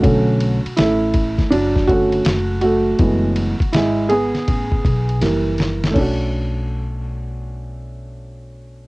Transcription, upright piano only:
X:1
M:4/4
L:1/8
Q:"Swing 16ths" 1/4=81
K:Bdor
V:1 name="Upright piano"
F2 [A,E]2 [F,D] F2 [A,F]- | [A,F]2 [G,E] [B,G]3 z2 | [A,CDF]8 |]
V:2 name="Upright piano"
[D,A,C] z4 [D,A,C] z2 | [E,G,A,B,] z4 z [E,=G,^A,]2 | z8 |]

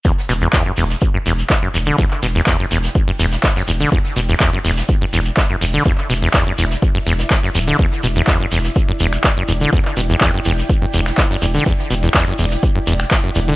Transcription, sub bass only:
X:1
M:4/4
L:1/8
Q:1/4=124
K:Em
V:1 name="Sub bass" clef=bass
z E,,, z E,,, z E,,, z E,,, | z E,,, z E,,, z E,,, z E,,, | z E,,, z E,,, z E,,, z E,,, | z E,,, z E,,, z E,,, z D,,, |
z E,,, z E,,, z E,,, z E,,, | z E,,, z E,,, z E,,, z E,,, | z E,,, z E,,, z E,,, z E,,, |]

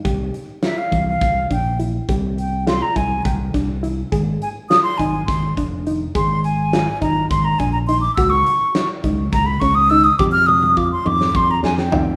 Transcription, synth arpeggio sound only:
X:1
M:7/8
L:1/8
Q:1/4=104
K:Cm
V:1 name="Synth arpeggio sound"
G2 F =E,2 D =E | G2 F =E2 D E | A2 F E2 D E | A2 F E2 D E |
_G2 _F E2 _D E | G2 F E2 D E |]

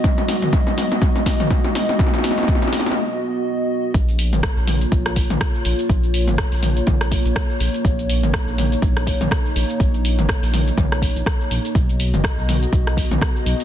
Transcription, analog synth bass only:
X:1
M:4/4
L:1/16
Q:"Swing 16ths" 1/4=123
K:Bbphr
V:1 name="Analog synth bass" clef=bass
z16 | z16 | B,,,3 A,,, z B,,,2 z B,,,2 z B,,, z2 B,,, z | B,,,3 A,,, z B,,,2 z B,,,2 z B,,, z2 B,,, z |
B,,,3 A,,, z B,,,2 z B,,,2 z B,,, z2 B,,, z | B,,,3 A,,, z B,,,2 z B,,,2 z B,,, z2 B,,, z | =B,,,3 ^F,,, z B,,,2 z B,,,2 z B,,, z2 B,,, z |]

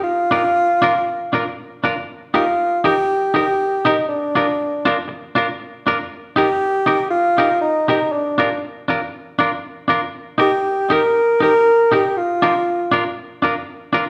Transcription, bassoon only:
X:1
M:4/4
L:1/8
Q:"Swing" 1/4=119
K:Eb
V:1 name="Bassoon"
F6 z2 | z F2 G2 G2 E | D4 z4 | z G3 F2 E E |
D2 z6 | z G2 B2 B2 G | F4 z4 |]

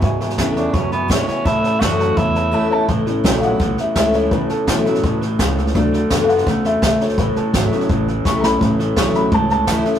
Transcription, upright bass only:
X:1
M:4/4
L:1/8
Q:1/4=168
K:A
V:1 name="Upright bass" clef=bass
G,,2 E,,2 F,,2 G,, z | A,,2 F,,2 E,,2 z2 | A,,,2 _B,,,2 =B,,, z C,,2 | E,, z B,,2 A,,2 C,,2 |
D,,2 F,,2 E,,2 D,,2 | A,,, z G,,, z A,,,2 B,,,2 | A,,,2 B,,,2 C,,2 D,,2 |]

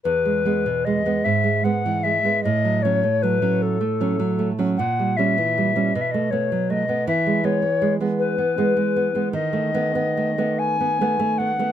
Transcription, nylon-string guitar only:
X:1
M:6/8
L:1/16
Q:3/8=51
K:E
V:1 name="Nylon-string guitar"
E,, G, [G,B,] B,, G, [G,B,] G,, G, [G,B,] E, G, [G,B,] | A,, F, [F,C] A, F, [F,C]2 A, [F,C] F, A, [F,C] | ^A,, =G, [G,C] E, G, [G,C] B,, =A, [A,B,] F, A, [A,B,] | E, G, [G,B,] B, G, [G,B,]2 B, [G,B,] G, B, [G,B,] |
D, A, [A,B,] B, A, [A,B,]2 B, [A,B,] A, B, [A,B,] |]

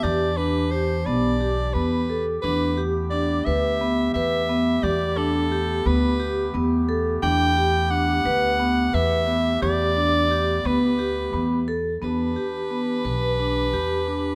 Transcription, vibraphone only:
X:1
M:7/8
L:1/8
Q:1/4=88
K:G
V:1 name="Vibraphone"
G D G B, G B, A | D G D B B, B B, | G D G B, G B, A | D G D B B, B B, |
G D G B, G B, A | B, G B, B D G D |]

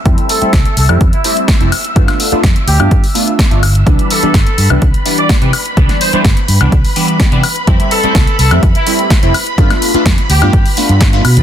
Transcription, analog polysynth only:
X:1
M:4/4
L:1/16
Q:1/4=126
K:C
V:1 name="Analog polysynth"
[G,A,CE]3 [G,A,CE] z3 [G,A,CE] z2 [G,A,CE]3 [G,A,CE] z2 | [A,B,DF]3 [A,B,DF] z3 [A,B,DF] z2 [A,B,DF]3 [A,B,DF] z2 | [E,G,B,D]3 [E,G,B,D] z3 [E,G,B,D] z2 [E,G,B,D]3 [E,G,B,D] z2 | [E,G,B,D]3 [E,G,B,D] z3 [E,G,B,D] z2 [E,G,B,D]3 [E,G,B,D] z2 |
[G,A,CE]3 [G,A,CE] z3 [G,A,CE] z2 [G,A,CE]3 [G,A,CE] z2 | [A,B,DF]3 [A,B,DF] z3 [A,B,DF] z2 [A,B,DF]3 [A,B,DF] z2 |]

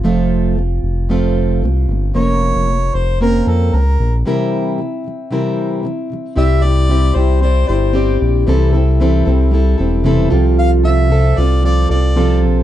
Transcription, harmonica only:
X:1
M:4/4
L:1/16
Q:"Swing 16ths" 1/4=114
K:F
V:1 name="Harmonica"
z16 | _d6 c2 B2 A2 B3 z | z16 | e2 d4 c2 c2 c4 z2 |
z16 | f2 e4 d2 d2 d4 z2 |]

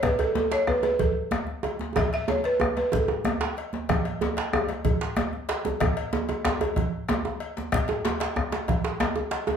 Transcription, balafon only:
X:1
M:12/8
L:1/8
Q:3/8=125
K:A
V:1 name="Balafon"
B A A c B B A3 z3 | e e c B2 B A4 z2 | z12 | z12 |
z12 |]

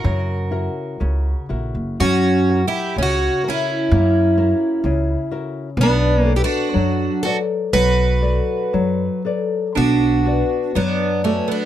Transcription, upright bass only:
X:1
M:2/4
L:1/16
Q:1/4=62
K:Bm
V:1 name="Upright bass" clef=bass
F,,4 C,,2 ^A,,, F,,, | F,,4 C,,2 z2 | F,,4 C,,2 z2 | B,,,4 F,,2 z2 |
B,,,4 F,,2 z2 | B,,,4 F,,4 |]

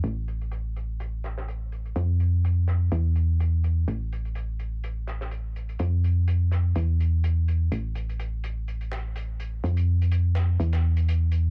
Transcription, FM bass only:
X:1
M:4/4
L:1/8
Q:"Swing 16ths" 1/4=125
K:Emix
V:1 name="FM bass" clef=bass
A,,,8 | =F,,4 E,,4 | A,,,8 | =F,,4 E,,4 |
A,,,8 | =F,,4 E,,4 |]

